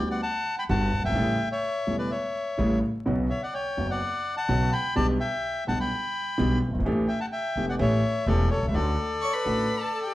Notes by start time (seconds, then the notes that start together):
0.00 D2 D3 G3 B3 F#4
0.11 D5 F#5
0.23 F#5 A5
0.58 G5 B5
0.69 G1 G2 D3 G3 B3 F#4 F#5 A5
0.98 F#1
1.04 G1 E5 G5
1.09 G#1
1.15 A1 A2 C#3 G3 A3 E4
1.52 C#5 E5
1.87 E1 E2 C#3 G3 A3 E4
1.98 B4 D5
2.10 C#5 E5
2.57 A1 A2 C#3 G3 A3 E4
3.05 B1 B2 C#3 F#3 B3 F#4
3.30 C#5 E5
3.43 D5 F#5
3.54 C#5 G5
3.77 F#1 F#2 C#3 F#3 B3 F#4
3.91 D5 F#5
4.37 F#5 A5
4.48 B1 B2 C#3 F#3 B3 F#4
4.73 G5 B5
4.96 B1 B2 D3 G3 B3 G4 D5 A5
5.20 E5 G5
5.67 B1 B2 D3 G3 B3 G4 F#5 A5
5.80 G5 B5
6.38 B1 B2 D3 G3 B3 G4
6.68 F#1
6.73 G1
6.79 G#1
6.85 A1 A2 E3 A3 D4 G4
7.08 E5 G5
7.20 F#5 A5
7.32 E5 G5
7.56 E1 E2 E3 A3 D4 G4
7.69 D5 F#5
7.79 A1 A2 E3 A3 C#4 G4 C#5 E5
8.26 E1 E2 E3 A3 C#4 G4 A4 D5
8.50 A4 C#5
8.57 B1
8.63 C2
8.68 C#2 E5
8.74 D2 D3 A3 C#4 F#4 A4 D5
9.22 C#5 C#6
9.34 B4 B5
9.45 A1 A2 D3 A3 C#4 F#4
9.81 A4 A5
10.04 G4 G5